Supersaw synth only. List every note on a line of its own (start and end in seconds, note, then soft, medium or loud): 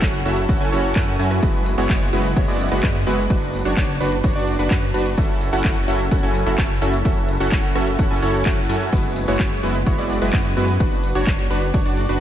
0.02 0.22 C#4 medium
0.02 0.22 E4 medium
0.02 0.22 F#4 medium
0.02 0.22 A4 medium
0.02 0.22 F#5 medium
0.25 0.38 C#4 medium
0.25 0.38 E4 medium
0.25 0.38 F#4 medium
0.25 0.38 A4 medium
0.25 0.38 E5 loud
0.49 0.59 C#4 medium
0.49 0.59 E4 medium
0.49 0.59 F#4 medium
0.49 0.59 A4 medium
0.49 0.59 F#5 loud
0.61 0.70 C#4 loud
0.61 0.70 E4 medium
0.61 0.70 F#4 medium
0.61 0.70 A4 medium
0.61 0.70 G#5 loud
0.72 0.93 C#4 loud
0.72 0.93 E4 medium
0.72 0.93 F#4 loud
0.72 0.93 A4 loud
0.72 0.93 C#5 loud
0.96 1.16 C#4 medium
0.96 1.16 E4 medium
0.96 1.16 F#4 medium
0.96 1.16 A4 medium
0.96 1.16 F#5 loud
1.19 1.40 C#4 medium
1.19 1.40 E4 medium
1.19 1.40 F#4 medium
1.19 1.40 A4 medium
1.19 1.40 G#5 medium
1.43 1.75 G#3 medium
1.43 1.75 B3 medium
1.43 1.75 E4 medium
1.43 1.75 F#4 medium
1.43 1.75 B4 medium
1.78 1.87 G#3 loud
1.78 1.87 B3 medium
1.78 1.87 E4 medium
1.78 1.87 F#4 medium
1.78 1.87 C#5 loud
1.90 2.09 G#3 medium
1.90 2.09 B3 medium
1.90 2.09 E4 medium
1.90 2.09 F#4 medium
1.90 2.09 C#5 medium
2.13 2.25 G#3 medium
2.13 2.25 B3 medium
2.13 2.25 E4 medium
2.13 2.25 F#4 medium
2.13 2.25 B4 loud
2.36 2.46 G#3 medium
2.36 2.46 B3 medium
2.36 2.46 E4 medium
2.36 2.46 F#4 medium
2.36 2.46 C#5 loud
2.48 2.69 G#3 loud
2.48 2.69 B3 medium
2.48 2.69 E4 medium
2.48 2.69 F#4 medium
2.48 2.69 D5 loud
2.72 2.82 G#3 medium
2.72 2.82 B3 medium
2.72 2.82 E4 medium
2.72 2.82 F#4 medium
2.72 2.82 B4 medium
2.83 2.96 G#3 medium
2.83 2.96 B3 medium
2.83 2.96 E4 medium
2.83 2.96 F#4 medium
2.83 2.96 B4 medium
3.07 3.19 G#3 loud
3.07 3.19 B3 medium
3.07 3.19 E4 medium
3.07 3.19 F#4 medium
3.07 3.19 B4 loud
3.30 3.63 D4 medium
3.30 3.63 F#4 medium
3.30 3.63 B4 medium
3.65 3.74 D4 medium
3.65 3.74 F#4 medium
3.65 3.74 C#5 loud
3.77 3.97 D4 medium
3.77 3.97 F#4 medium
3.77 3.97 C#5 medium
4.00 4.13 D4 medium
4.00 4.13 F#4 medium
4.00 4.13 B4 loud
4.24 4.34 D4 medium
4.24 4.34 F#4 medium
4.24 4.34 C#5 loud
4.36 4.56 D4 loud
4.36 4.56 F#4 medium
4.36 4.56 D5 loud
4.59 4.69 D4 medium
4.59 4.69 F#4 medium
4.59 4.69 B4 medium
4.71 4.83 D4 medium
4.71 4.83 F#4 medium
4.71 4.83 B4 medium
4.94 5.07 D4 loud
4.94 5.07 F#4 medium
4.94 5.07 B4 loud
5.18 5.50 C#4 medium
5.18 5.50 E4 medium
5.18 5.50 F#4 medium
5.18 5.50 A4 medium
5.18 5.50 E5 medium
5.53 5.62 C#4 medium
5.53 5.62 E4 medium
5.53 5.62 F#4 medium
5.53 5.62 A4 medium
5.53 5.62 F#5 loud
5.65 5.84 C#4 medium
5.65 5.84 E4 medium
5.88 6.00 C#4 medium
5.88 6.00 E4 medium
5.88 6.00 F#4 medium
5.88 6.00 A4 medium
5.88 6.00 E5 loud
6.11 6.21 C#4 medium
6.11 6.21 E4 medium
6.11 6.21 F#4 medium
6.11 6.21 A4 medium
6.11 6.21 F#5 loud
6.23 6.44 C#4 loud
6.23 6.44 E4 medium
6.23 6.44 F#4 medium
6.23 6.44 A4 medium
6.23 6.44 G#5 loud
6.46 6.56 C#4 medium
6.46 6.56 E4 medium
6.46 6.56 F#4 medium
6.46 6.57 A4 medium
6.46 6.56 E5 medium
6.82 6.94 C#4 medium
6.82 6.94 E4 medium
6.82 6.94 F#4 medium
6.82 6.94 A4 medium
6.82 6.94 E5 loud
7.05 7.37 C#4 medium
7.05 7.38 E4 medium
7.05 7.37 F#4 medium
7.05 7.37 A4 medium
7.05 7.37 E5 medium
7.40 7.49 C#4 loud
7.40 7.49 E4 medium
7.40 7.49 F#4 medium
7.40 7.49 A4 medium
7.40 7.49 F#5 loud
7.52 7.72 C#4 medium
7.52 7.72 E4 medium
7.52 7.72 F#4 medium
7.52 7.72 A4 medium
7.75 7.88 C#4 loud
7.75 7.88 E4 medium
7.75 7.88 F#4 medium
7.75 7.88 A4 medium
7.75 7.88 E5 loud
7.99 8.09 C#4 medium
7.99 8.09 E4 medium
7.99 8.09 F#4 medium
7.99 8.09 A4 medium
7.99 8.09 F#5 loud
8.11 8.20 C#4 loud
8.11 8.20 E4 medium
8.11 8.20 F#4 medium
8.11 8.20 A4 medium
8.11 8.20 G#5 loud
8.22 8.43 C#4 loud
8.22 8.43 E4 medium
8.22 8.43 F#4 medium
8.22 8.43 A4 medium
8.22 8.43 C#5 loud
8.46 8.66 C#4 medium
8.46 8.66 F#4 medium
8.46 8.66 A4 medium
8.46 8.66 F#5 loud
8.69 8.90 C#4 medium
8.69 8.90 E4 medium
8.69 8.90 F#4 medium
8.69 8.90 A4 medium
8.69 8.90 G#5 medium
8.93 9.25 G#3 medium
8.93 9.25 B3 medium
8.93 9.25 E4 medium
8.93 9.25 F#4 medium
8.93 9.25 B4 medium
9.28 9.37 G#3 loud
9.28 9.37 B3 medium
9.28 9.37 E4 medium
9.28 9.37 F#4 medium
9.28 9.37 C#5 loud
9.40 9.59 B3 medium
9.40 9.60 E4 medium
9.40 9.59 F#4 medium
9.40 9.59 C#5 medium
9.63 9.76 G#3 medium
9.63 9.76 B3 medium
9.63 9.76 E4 medium
9.63 9.76 F#4 medium
9.63 9.76 B4 loud
9.87 9.96 G#3 medium
9.87 9.96 B3 medium
9.87 9.96 E4 medium
9.87 9.96 F#4 medium
9.87 9.96 C#5 loud
9.98 10.19 G#3 loud
9.98 10.19 B3 medium
9.98 10.19 E4 medium
9.98 10.19 F#4 medium
9.98 10.19 D5 loud
10.22 10.32 G#3 medium
10.22 10.32 B3 medium
10.22 10.32 E4 medium
10.22 10.32 F#4 medium
10.22 10.32 B4 medium
10.33 10.46 G#3 medium
10.33 10.46 B3 medium
10.33 10.46 E4 medium
10.33 10.46 B4 medium
10.57 10.69 G#3 loud
10.57 10.69 B3 medium
10.57 10.69 E4 medium
10.57 10.69 F#4 medium
10.57 10.69 B4 loud
10.80 11.13 D4 medium
10.80 11.13 F#4 medium
10.80 11.13 B4 medium
11.15 11.24 D4 loud
11.15 11.24 F#4 medium
11.15 11.24 C#5 loud
11.27 11.47 D4 medium
11.27 11.47 F#4 medium
11.27 11.47 C#5 medium
11.51 11.63 D4 medium
11.51 11.63 F#4 medium
11.51 11.63 B4 loud
11.74 11.84 D4 medium
11.74 11.84 F#4 medium
11.74 11.84 C#5 loud
11.86 12.06 D4 loud
11.86 12.06 F#4 medium
11.86 12.06 D5 loud
12.09 12.19 D4 medium
12.09 12.19 F#4 medium
12.09 12.19 B4 medium